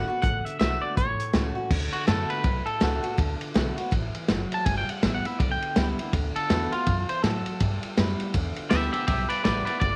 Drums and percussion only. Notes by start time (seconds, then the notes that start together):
0.23 kick, closed hi-hat
0.46 closed hi-hat
0.61 snare, closed hi-hat
0.97 kick, closed hi-hat
1.20 closed hi-hat
1.34 snare, closed hi-hat
1.71 kick, crash
1.93 ride
2.08 snare, ride
2.30 ride
2.44 kick, ride
2.66 ride
2.81 snare, ride
3.04 ride
3.18 kick, ride
3.41 ride
3.55 snare, ride
3.78 ride
3.92 kick, ride
4.15 ride
4.28 snare, ride
4.52 ride
4.66 kick, ride
4.89 ride
5.03 snare, ride
5.25 ride
5.40 kick, ride
5.62 ride
5.76 snare, ride
5.99 ride
6.13 kick, ride
6.36 ride
6.50 snare, ride
6.72 ride
6.86 kick, ride
7.09 ride
7.24 snare, ride
7.46 ride
7.60 kick, ride
7.83 ride
7.98 snare, ride
8.20 ride
8.34 kick, ride
8.56 ride
8.71 snare, ride
8.94 ride
9.08 kick, ride
9.30 ride
9.45 snare, ride
9.67 ride
9.81 kick, ride